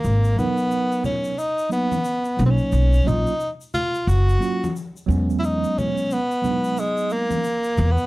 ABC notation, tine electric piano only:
X:1
M:4/4
L:1/8
Q:"Swing 16ths" 1/4=89
K:G#dor
V:1 name="Tine electric piano"
z [F,B,DA]3 z [F,A,B,D] z [F,A,C=D^D]- | [F,A,C=D^D] [F,A,CE] z3 [F,A,CE] z [F,G,B,C]- | [F,G,B,C]2 z [F,G,B,=D^D]3 z2 |]